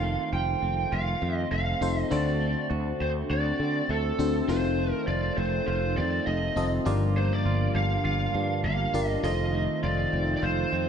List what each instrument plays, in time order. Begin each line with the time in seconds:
Already playing: fretless electric bass F1, clean electric guitar D#3 F4, fm electric piano C4 D#4 F4 A4 C5, lead electric guitar F5
0.03 clean electric guitar A3
0.32 fretless electric bass F1, clean electric guitar F4, lead electric guitar G5
0.62 fretless electric bass F1, clean electric guitar C4
0.92 fretless electric bass F1, clean electric guitar F4, lead electric guitar F5
1.22 fretless electric bass F2, clean electric guitar C4
1.35 lead electric guitar D#5
1.51 fretless electric bass F1, clean electric guitar A3, lead electric guitar F5
1.81 fretless electric bass F1, clean electric guitar C4, fm electric piano C4 D#4 F4 A4 C5
1.99 lead electric guitar D#5
2.10 fretless electric bass D2, fm electric piano D3 C4 D4 F#4 A4 C5, clean electric guitar A3 F#4, lead electric guitar D5
2.41 clean electric guitar A3
2.70 fretless electric bass D2, clean electric guitar F#4
3.00 fretless electric bass D2, clean electric guitar C4, lead electric guitar C5
3.30 fretless electric bass D2, clean electric guitar F#4, lead electric guitar D5
3.59 fretless electric bass D3, clean electric guitar C4
3.89 fretless electric bass D2, clean electric guitar A3, lead electric guitar A4
4.19 fretless electric bass D2, clean electric guitar C4, fm electric piano C4 D4 F#4 A4 C5
4.48 fretless electric bass F1, clean electric guitar D#3 F4, analog synth pad D#3 A3 C4 F4, fm electric piano C4 D#4 F4 A4 C5, lead electric guitar C5
4.78 clean electric guitar A3
4.92 lead electric guitar A#4
5.07 fretless electric bass F1, clean electric guitar F4, lead electric guitar D5
5.37 fretless electric bass F1, clean electric guitar C4, lead electric guitar C5
5.67 fretless electric bass F1, clean electric guitar F4, lead electric guitar C5
5.97 fretless electric bass F2, clean electric guitar C4, lead electric guitar D5
6.27 fretless electric bass F1, clean electric guitar A3, lead electric guitar D#5
6.56 fretless electric bass F1, fm electric piano C4 D#4 F4 A4 D#5, clean electric guitar C4
6.85 fretless electric bass G1, fm electric piano G2 D4 F4 G4 A#4 D5, analog synth pad D3 G3 A#3, clean electric guitar F3 F4
7.16 clean electric guitar A#3, lead electric guitar C5
7.33 lead electric guitar D5
7.45 fretless electric bass G1, clean electric guitar F4
7.75 fretless electric bass G1, clean electric guitar D4, lead electric guitar F5
8.04 fretless electric bass G1, clean electric guitar F4, lead electric guitar F5
8.34 fretless electric bass G2, clean electric guitar D4
8.64 fretless electric bass G1, clean electric guitar A#3, lead electric guitar F5
8.93 fretless electric bass G1, clean electric guitar D4, fm electric piano D4 F4 G4 A#4 D5
9.07 lead electric guitar D#5
9.23 fretless electric bass F1, analog synth pad D#3 A3 C4, clean electric guitar D#3 F4, fm electric piano D#4 F4 A4 C5 D#5, lead electric guitar D#5
9.54 clean electric guitar A3
9.83 fretless electric bass F1, clean electric guitar F4, lead electric guitar D5
10.12 fretless electric bass F1, clean electric guitar C4
10.37 lead electric guitar D5
10.43 fretless electric bass F1, clean electric guitar F4, lead electric guitar C5
10.72 fretless electric bass F2, clean electric guitar C4